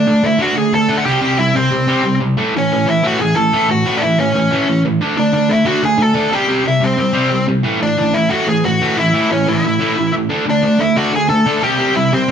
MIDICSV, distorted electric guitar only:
0, 0, Header, 1, 2, 480
1, 0, Start_track
1, 0, Tempo, 330396
1, 1543, Time_signature, 4, 2, 24, 8
1, 17890, End_track
2, 0, Start_track
2, 0, Title_t, "Distorted electric guitar"
2, 0, Program_c, 0, 30
2, 102, Note_on_c, 0, 50, 69
2, 110, Note_on_c, 0, 57, 80
2, 320, Note_off_c, 0, 50, 0
2, 324, Note_off_c, 0, 57, 0
2, 336, Note_on_c, 0, 50, 70
2, 346, Note_on_c, 0, 57, 70
2, 539, Note_off_c, 0, 50, 0
2, 547, Note_off_c, 0, 57, 0
2, 556, Note_on_c, 0, 50, 82
2, 564, Note_on_c, 0, 57, 86
2, 570, Note_on_c, 0, 62, 88
2, 780, Note_off_c, 0, 50, 0
2, 792, Note_off_c, 0, 57, 0
2, 798, Note_on_c, 0, 50, 65
2, 803, Note_off_c, 0, 62, 0
2, 810, Note_on_c, 0, 57, 72
2, 1027, Note_off_c, 0, 50, 0
2, 1033, Note_off_c, 0, 57, 0
2, 1057, Note_on_c, 0, 50, 85
2, 1061, Note_on_c, 0, 57, 87
2, 1268, Note_off_c, 0, 50, 0
2, 1270, Note_off_c, 0, 57, 0
2, 1285, Note_on_c, 0, 50, 84
2, 1287, Note_on_c, 0, 57, 86
2, 1306, Note_on_c, 0, 62, 95
2, 1519, Note_off_c, 0, 50, 0
2, 1521, Note_off_c, 0, 57, 0
2, 1528, Note_on_c, 0, 48, 92
2, 1530, Note_off_c, 0, 62, 0
2, 1540, Note_on_c, 0, 55, 96
2, 1540, Note_on_c, 0, 60, 98
2, 1750, Note_off_c, 0, 48, 0
2, 1752, Note_off_c, 0, 55, 0
2, 1754, Note_off_c, 0, 60, 0
2, 1767, Note_on_c, 0, 48, 88
2, 1770, Note_on_c, 0, 55, 84
2, 1772, Note_on_c, 0, 60, 95
2, 1987, Note_off_c, 0, 48, 0
2, 1996, Note_off_c, 0, 55, 0
2, 2002, Note_off_c, 0, 60, 0
2, 2004, Note_on_c, 0, 48, 77
2, 2014, Note_on_c, 0, 55, 91
2, 2229, Note_off_c, 0, 48, 0
2, 2233, Note_off_c, 0, 55, 0
2, 2255, Note_on_c, 0, 48, 66
2, 2269, Note_on_c, 0, 55, 73
2, 2474, Note_off_c, 0, 48, 0
2, 2481, Note_off_c, 0, 55, 0
2, 2495, Note_on_c, 0, 48, 72
2, 2499, Note_on_c, 0, 55, 73
2, 2714, Note_off_c, 0, 48, 0
2, 2715, Note_off_c, 0, 55, 0
2, 2732, Note_on_c, 0, 48, 89
2, 2735, Note_on_c, 0, 55, 91
2, 2739, Note_on_c, 0, 60, 95
2, 2939, Note_off_c, 0, 48, 0
2, 2946, Note_off_c, 0, 55, 0
2, 2957, Note_on_c, 0, 48, 76
2, 2964, Note_off_c, 0, 60, 0
2, 2964, Note_on_c, 0, 55, 81
2, 3184, Note_off_c, 0, 48, 0
2, 3187, Note_off_c, 0, 55, 0
2, 3201, Note_on_c, 0, 48, 71
2, 3209, Note_on_c, 0, 55, 75
2, 3426, Note_off_c, 0, 48, 0
2, 3429, Note_off_c, 0, 55, 0
2, 3445, Note_on_c, 0, 45, 91
2, 3447, Note_on_c, 0, 52, 94
2, 3456, Note_on_c, 0, 57, 95
2, 3674, Note_off_c, 0, 45, 0
2, 3678, Note_off_c, 0, 52, 0
2, 3682, Note_off_c, 0, 57, 0
2, 3691, Note_on_c, 0, 45, 75
2, 3702, Note_on_c, 0, 52, 81
2, 3910, Note_off_c, 0, 45, 0
2, 3915, Note_off_c, 0, 52, 0
2, 3951, Note_on_c, 0, 45, 77
2, 3953, Note_on_c, 0, 52, 82
2, 4139, Note_off_c, 0, 45, 0
2, 4144, Note_off_c, 0, 52, 0
2, 4157, Note_on_c, 0, 45, 67
2, 4162, Note_on_c, 0, 52, 82
2, 4382, Note_off_c, 0, 45, 0
2, 4385, Note_off_c, 0, 52, 0
2, 4400, Note_on_c, 0, 45, 88
2, 4407, Note_on_c, 0, 52, 89
2, 4412, Note_on_c, 0, 57, 93
2, 4633, Note_off_c, 0, 45, 0
2, 4637, Note_off_c, 0, 52, 0
2, 4639, Note_off_c, 0, 57, 0
2, 4648, Note_on_c, 0, 45, 69
2, 4656, Note_on_c, 0, 52, 77
2, 4860, Note_off_c, 0, 45, 0
2, 4864, Note_off_c, 0, 52, 0
2, 4878, Note_on_c, 0, 45, 80
2, 4881, Note_on_c, 0, 52, 82
2, 5102, Note_off_c, 0, 45, 0
2, 5104, Note_off_c, 0, 52, 0
2, 5125, Note_on_c, 0, 45, 86
2, 5131, Note_on_c, 0, 57, 102
2, 5132, Note_on_c, 0, 52, 100
2, 5343, Note_off_c, 0, 45, 0
2, 5345, Note_off_c, 0, 52, 0
2, 5358, Note_off_c, 0, 57, 0
2, 5361, Note_on_c, 0, 45, 78
2, 5363, Note_on_c, 0, 52, 89
2, 5583, Note_off_c, 0, 45, 0
2, 5584, Note_off_c, 0, 52, 0
2, 5602, Note_on_c, 0, 45, 94
2, 5606, Note_on_c, 0, 52, 87
2, 5608, Note_on_c, 0, 57, 100
2, 5827, Note_off_c, 0, 45, 0
2, 5831, Note_off_c, 0, 52, 0
2, 5836, Note_off_c, 0, 57, 0
2, 5845, Note_on_c, 0, 45, 77
2, 5848, Note_on_c, 0, 52, 83
2, 6064, Note_off_c, 0, 45, 0
2, 6066, Note_off_c, 0, 52, 0
2, 6083, Note_on_c, 0, 45, 65
2, 6090, Note_on_c, 0, 52, 73
2, 6293, Note_off_c, 0, 45, 0
2, 6304, Note_off_c, 0, 52, 0
2, 6311, Note_on_c, 0, 45, 75
2, 6321, Note_on_c, 0, 52, 72
2, 6529, Note_off_c, 0, 45, 0
2, 6537, Note_off_c, 0, 52, 0
2, 6547, Note_on_c, 0, 45, 82
2, 6555, Note_on_c, 0, 52, 89
2, 6558, Note_on_c, 0, 57, 92
2, 6759, Note_off_c, 0, 45, 0
2, 6771, Note_off_c, 0, 52, 0
2, 6776, Note_on_c, 0, 45, 74
2, 6789, Note_on_c, 0, 52, 82
2, 6790, Note_off_c, 0, 57, 0
2, 7009, Note_off_c, 0, 45, 0
2, 7015, Note_off_c, 0, 52, 0
2, 7044, Note_on_c, 0, 45, 72
2, 7051, Note_on_c, 0, 52, 74
2, 7263, Note_off_c, 0, 45, 0
2, 7267, Note_off_c, 0, 52, 0
2, 7279, Note_on_c, 0, 50, 85
2, 7288, Note_on_c, 0, 57, 100
2, 7290, Note_on_c, 0, 62, 113
2, 7492, Note_off_c, 0, 50, 0
2, 7504, Note_off_c, 0, 57, 0
2, 7509, Note_on_c, 0, 50, 77
2, 7515, Note_off_c, 0, 62, 0
2, 7521, Note_on_c, 0, 57, 75
2, 7730, Note_off_c, 0, 50, 0
2, 7741, Note_off_c, 0, 57, 0
2, 7748, Note_on_c, 0, 50, 74
2, 7756, Note_on_c, 0, 57, 75
2, 7962, Note_off_c, 0, 50, 0
2, 7968, Note_off_c, 0, 57, 0
2, 7979, Note_on_c, 0, 50, 66
2, 7986, Note_on_c, 0, 57, 65
2, 8189, Note_off_c, 0, 50, 0
2, 8207, Note_off_c, 0, 57, 0
2, 8207, Note_on_c, 0, 50, 80
2, 8224, Note_on_c, 0, 57, 93
2, 8231, Note_on_c, 0, 62, 88
2, 8448, Note_off_c, 0, 57, 0
2, 8449, Note_off_c, 0, 50, 0
2, 8465, Note_off_c, 0, 62, 0
2, 8466, Note_on_c, 0, 50, 77
2, 8466, Note_on_c, 0, 57, 75
2, 8668, Note_off_c, 0, 50, 0
2, 8671, Note_off_c, 0, 57, 0
2, 8685, Note_on_c, 0, 50, 79
2, 8688, Note_on_c, 0, 57, 84
2, 8903, Note_off_c, 0, 50, 0
2, 8913, Note_off_c, 0, 57, 0
2, 8921, Note_on_c, 0, 50, 82
2, 8930, Note_on_c, 0, 57, 83
2, 8933, Note_on_c, 0, 62, 91
2, 9168, Note_off_c, 0, 50, 0
2, 9174, Note_off_c, 0, 57, 0
2, 9174, Note_on_c, 0, 48, 90
2, 9175, Note_off_c, 0, 62, 0
2, 9181, Note_on_c, 0, 60, 103
2, 9182, Note_on_c, 0, 55, 102
2, 9403, Note_off_c, 0, 48, 0
2, 9406, Note_off_c, 0, 55, 0
2, 9407, Note_off_c, 0, 60, 0
2, 9420, Note_on_c, 0, 48, 92
2, 9424, Note_on_c, 0, 55, 99
2, 9425, Note_on_c, 0, 60, 99
2, 9639, Note_off_c, 0, 48, 0
2, 9647, Note_off_c, 0, 55, 0
2, 9656, Note_on_c, 0, 48, 79
2, 9661, Note_off_c, 0, 60, 0
2, 9664, Note_on_c, 0, 55, 87
2, 9871, Note_off_c, 0, 48, 0
2, 9877, Note_off_c, 0, 55, 0
2, 9889, Note_on_c, 0, 48, 68
2, 9894, Note_on_c, 0, 55, 73
2, 10116, Note_off_c, 0, 48, 0
2, 10126, Note_off_c, 0, 55, 0
2, 10134, Note_on_c, 0, 48, 69
2, 10145, Note_on_c, 0, 55, 77
2, 10344, Note_off_c, 0, 48, 0
2, 10353, Note_off_c, 0, 55, 0
2, 10361, Note_on_c, 0, 48, 88
2, 10371, Note_on_c, 0, 55, 93
2, 10374, Note_on_c, 0, 60, 90
2, 10609, Note_off_c, 0, 48, 0
2, 10614, Note_off_c, 0, 55, 0
2, 10615, Note_off_c, 0, 60, 0
2, 10629, Note_on_c, 0, 48, 68
2, 10629, Note_on_c, 0, 55, 88
2, 10847, Note_off_c, 0, 48, 0
2, 10853, Note_off_c, 0, 55, 0
2, 10865, Note_on_c, 0, 48, 68
2, 10872, Note_on_c, 0, 55, 72
2, 11085, Note_off_c, 0, 48, 0
2, 11091, Note_on_c, 0, 45, 91
2, 11095, Note_off_c, 0, 55, 0
2, 11101, Note_on_c, 0, 52, 100
2, 11104, Note_on_c, 0, 57, 102
2, 11322, Note_off_c, 0, 45, 0
2, 11332, Note_off_c, 0, 52, 0
2, 11339, Note_on_c, 0, 45, 73
2, 11340, Note_off_c, 0, 57, 0
2, 11349, Note_on_c, 0, 52, 78
2, 11568, Note_off_c, 0, 45, 0
2, 11574, Note_off_c, 0, 52, 0
2, 11592, Note_on_c, 0, 45, 74
2, 11597, Note_on_c, 0, 52, 77
2, 11806, Note_off_c, 0, 45, 0
2, 11806, Note_off_c, 0, 52, 0
2, 11823, Note_on_c, 0, 45, 72
2, 11824, Note_on_c, 0, 52, 69
2, 12043, Note_off_c, 0, 45, 0
2, 12046, Note_off_c, 0, 52, 0
2, 12060, Note_on_c, 0, 45, 90
2, 12064, Note_on_c, 0, 52, 86
2, 12077, Note_on_c, 0, 57, 89
2, 12287, Note_off_c, 0, 45, 0
2, 12293, Note_off_c, 0, 52, 0
2, 12305, Note_on_c, 0, 45, 77
2, 12307, Note_off_c, 0, 57, 0
2, 12311, Note_on_c, 0, 52, 84
2, 12532, Note_off_c, 0, 45, 0
2, 12535, Note_off_c, 0, 52, 0
2, 12556, Note_on_c, 0, 45, 82
2, 12558, Note_on_c, 0, 52, 89
2, 12778, Note_off_c, 0, 45, 0
2, 12779, Note_off_c, 0, 52, 0
2, 12805, Note_on_c, 0, 45, 84
2, 12811, Note_on_c, 0, 52, 88
2, 12821, Note_on_c, 0, 57, 95
2, 13007, Note_off_c, 0, 45, 0
2, 13020, Note_off_c, 0, 52, 0
2, 13025, Note_on_c, 0, 45, 86
2, 13037, Note_on_c, 0, 52, 91
2, 13040, Note_off_c, 0, 57, 0
2, 13252, Note_off_c, 0, 45, 0
2, 13258, Note_off_c, 0, 52, 0
2, 13273, Note_on_c, 0, 45, 84
2, 13279, Note_on_c, 0, 52, 97
2, 13281, Note_on_c, 0, 57, 94
2, 13497, Note_off_c, 0, 45, 0
2, 13501, Note_off_c, 0, 52, 0
2, 13510, Note_off_c, 0, 57, 0
2, 13515, Note_on_c, 0, 45, 75
2, 13519, Note_on_c, 0, 52, 85
2, 13733, Note_off_c, 0, 45, 0
2, 13740, Note_off_c, 0, 52, 0
2, 13751, Note_on_c, 0, 45, 69
2, 13763, Note_on_c, 0, 52, 73
2, 13976, Note_off_c, 0, 45, 0
2, 13982, Note_off_c, 0, 52, 0
2, 14005, Note_on_c, 0, 45, 74
2, 14012, Note_on_c, 0, 52, 79
2, 14207, Note_off_c, 0, 45, 0
2, 14215, Note_off_c, 0, 52, 0
2, 14224, Note_on_c, 0, 45, 76
2, 14233, Note_on_c, 0, 52, 92
2, 14241, Note_on_c, 0, 57, 93
2, 14456, Note_off_c, 0, 45, 0
2, 14461, Note_off_c, 0, 52, 0
2, 14471, Note_off_c, 0, 57, 0
2, 14474, Note_on_c, 0, 45, 73
2, 14478, Note_on_c, 0, 52, 83
2, 14698, Note_off_c, 0, 45, 0
2, 14700, Note_off_c, 0, 52, 0
2, 14717, Note_on_c, 0, 45, 63
2, 14729, Note_on_c, 0, 52, 74
2, 14940, Note_off_c, 0, 45, 0
2, 14946, Note_off_c, 0, 52, 0
2, 14953, Note_on_c, 0, 50, 98
2, 14960, Note_on_c, 0, 57, 88
2, 14965, Note_on_c, 0, 62, 98
2, 15170, Note_off_c, 0, 50, 0
2, 15179, Note_off_c, 0, 57, 0
2, 15188, Note_on_c, 0, 50, 68
2, 15194, Note_off_c, 0, 62, 0
2, 15196, Note_on_c, 0, 57, 77
2, 15409, Note_off_c, 0, 50, 0
2, 15421, Note_off_c, 0, 57, 0
2, 15426, Note_on_c, 0, 50, 72
2, 15446, Note_on_c, 0, 57, 91
2, 15655, Note_off_c, 0, 57, 0
2, 15656, Note_off_c, 0, 50, 0
2, 15673, Note_on_c, 0, 50, 65
2, 15673, Note_on_c, 0, 57, 73
2, 15900, Note_off_c, 0, 50, 0
2, 15900, Note_off_c, 0, 57, 0
2, 15919, Note_on_c, 0, 50, 86
2, 15920, Note_on_c, 0, 57, 94
2, 15933, Note_on_c, 0, 62, 97
2, 16143, Note_off_c, 0, 50, 0
2, 16153, Note_off_c, 0, 57, 0
2, 16160, Note_off_c, 0, 62, 0
2, 16161, Note_on_c, 0, 50, 71
2, 16171, Note_on_c, 0, 57, 73
2, 16380, Note_off_c, 0, 50, 0
2, 16390, Note_off_c, 0, 57, 0
2, 16398, Note_on_c, 0, 50, 74
2, 16408, Note_on_c, 0, 57, 83
2, 16624, Note_off_c, 0, 50, 0
2, 16629, Note_off_c, 0, 57, 0
2, 16645, Note_on_c, 0, 50, 97
2, 16654, Note_on_c, 0, 57, 98
2, 16663, Note_on_c, 0, 62, 99
2, 16878, Note_off_c, 0, 50, 0
2, 16882, Note_off_c, 0, 57, 0
2, 16887, Note_off_c, 0, 62, 0
2, 16888, Note_on_c, 0, 48, 88
2, 16895, Note_on_c, 0, 60, 99
2, 16898, Note_on_c, 0, 55, 112
2, 17108, Note_off_c, 0, 48, 0
2, 17118, Note_off_c, 0, 60, 0
2, 17119, Note_off_c, 0, 55, 0
2, 17126, Note_on_c, 0, 48, 95
2, 17136, Note_on_c, 0, 55, 97
2, 17136, Note_on_c, 0, 60, 98
2, 17345, Note_off_c, 0, 48, 0
2, 17357, Note_off_c, 0, 55, 0
2, 17362, Note_on_c, 0, 48, 70
2, 17364, Note_off_c, 0, 60, 0
2, 17374, Note_on_c, 0, 55, 84
2, 17588, Note_off_c, 0, 48, 0
2, 17594, Note_off_c, 0, 55, 0
2, 17617, Note_on_c, 0, 48, 63
2, 17617, Note_on_c, 0, 55, 83
2, 17831, Note_off_c, 0, 48, 0
2, 17836, Note_off_c, 0, 55, 0
2, 17890, End_track
0, 0, End_of_file